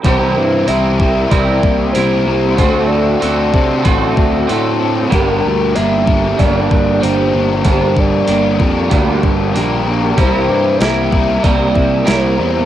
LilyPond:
<<
  \new Staff \with { instrumentName = "Soft synth lead" } { \time 4/4 \key c \mixolydian \tempo 4 = 95 c''4 e''4 d''4 c''4 | c''8 d''2 r4. | bes'4 e''4 d''4 c''4 | c''8 d''2 r4. |
c''4 e''4 d''4 c''4 | }
  \new Staff \with { instrumentName = "Overdriven electric guitar" } { \time 4/4 \key c \mixolydian <c e g c' e' bes'>4 <g c' e' bes'>8 <g c' e' bes'>4. <g c' e' bes'>8 <g c' e' bes'>8 | <d c' fis' a'>4 <d c' fis' a'>8 <c' fis' a'>4. <d c' fis' a'>8 <c' fis' a'>8 | <g d' g' bes'>4 <g d' g' bes'>8 <d' g' bes'>4. <g d' g' bes'>8 <d' g' bes'>8 | <g d' g' bes'>4 <g d' g' bes'>8 <d' g' bes'>4. <g d' g' bes'>8 <d' g' bes'>8 |
<c e g c' e' bes'>4 <g c' e' bes'>8 <g c' e' bes'>4. <g c' e' bes'>8 <g c' e' bes'>8 | }
  \new Staff \with { instrumentName = "Clean electric guitar" } { \time 4/4 \key c \mixolydian <c e g c' e' bes'>4 <g c' e' bes'>4 <c e g c' e' bes'>4 <g c' e' bes'>4 | <d a c' fis' a'>4 <a c' fis' a'>4 <d a c' fis' a'>4 <a c' fis' a'>4 | <g, d g bes d'>4 <g bes d'>4 <g, d g bes d'>4 <g bes d'>4 | <g, d g bes d'>4 <g bes d'>4 <g, d g bes d'>4 <g bes d'>4 |
<c g bes e' bes'>4 <g bes e' bes'>4 <c g bes e' bes'>4 <g bes e' bes'>4 | }
  \new Staff \with { instrumentName = "Clean electric guitar" } { \time 4/4 \key c \mixolydian g8 e'8 g8 g8 g8 bes8 g8 g8 | fis8 a'8 c'8 fis8 c'8 d'8 fis8 c'8 | g4 bes8 g8 bes8 d'8 g8 bes8 | g4 bes8 g8 bes8 d'8 g8 bes8 |
g8 g'8 bes8 g8 bes8 e'8 g8 bes8 | }
  \new Staff \with { instrumentName = "Picked electric bass" } { \clef bass \time 4/4 \key c \mixolydian c,8 g,8 c,4 c,8 c,8 c,8 c,8 | d,4 d,8 c8 a,,8 d,8 a,4 | g,,8 d,8 g,,4 g,,8 g,,8 g,,8 g,,8 | g,,4 g,,8 f,8 d,8 g,,8 bes,,4 |
c,8 g,8 c,4 c,8 c,8 c,8 e,8 | }
  \new DrumStaff \with { instrumentName = "Drums" } \drummode { \time 4/4 <hho bd>4 hho8 bd8 <hho bd>8 bd8 hho4 | <hho bd>4 hho8 bd8 <hho bd>8 bd8 hho4 | <hho bd>4 hho8 bd8 <hho bd>8 bd8 hho4 | <hho bd>8 bd8 hho8 bd8 <hho bd>8 bd8 hho4 |
<hho bd>4 <hho sn>8 bd8 <hho bd>8 bd8 <hho sn>4 | }
>>